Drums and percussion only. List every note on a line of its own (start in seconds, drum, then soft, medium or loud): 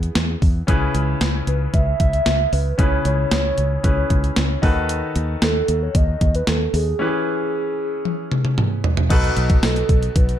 0.03 closed hi-hat soft
0.15 snare loud
0.15 closed hi-hat medium
0.42 kick medium
0.42 open hi-hat medium
0.68 kick loud
0.68 closed hi-hat loud
0.95 closed hi-hat medium
1.21 snare loud
1.21 closed hi-hat medium
1.47 closed hi-hat medium
1.74 kick loud
1.74 closed hi-hat medium
2.00 kick medium
2.00 closed hi-hat medium
2.13 closed hi-hat soft
2.26 snare loud
2.26 closed hi-hat medium
2.53 open hi-hat medium
2.79 kick loud
2.79 closed hi-hat loud
3.05 closed hi-hat medium
3.31 snare loud
3.31 closed hi-hat medium
3.58 closed hi-hat medium
3.84 kick medium
3.84 closed hi-hat medium
4.10 kick medium
4.10 closed hi-hat medium
4.24 closed hi-hat soft
4.36 snare loud
4.36 closed hi-hat medium
4.63 kick loud
4.63 open hi-hat medium
4.89 closed hi-hat loud
5.16 closed hi-hat medium
5.42 snare loud
5.42 closed hi-hat medium
5.68 closed hi-hat medium
5.95 kick loud
5.95 closed hi-hat medium
6.21 kick medium
6.21 closed hi-hat medium
6.35 closed hi-hat soft
6.47 snare loud
6.47 closed hi-hat medium
6.74 open hi-hat medium
8.05 high tom medium
8.32 mid tom medium
8.45 mid tom medium
8.58 mid tom medium
8.84 floor tom medium
8.97 floor tom medium
9.10 kick loud
9.10 closed hi-hat loud
9.10 crash medium
9.24 closed hi-hat medium
9.37 closed hi-hat medium
9.50 kick medium
9.50 closed hi-hat medium
9.63 snare loud
9.63 closed hi-hat medium
9.63 tambourine medium
9.76 closed hi-hat medium
9.89 kick medium
9.89 closed hi-hat medium
10.03 closed hi-hat medium
10.16 kick loud
10.16 closed hi-hat medium
10.29 closed hi-hat soft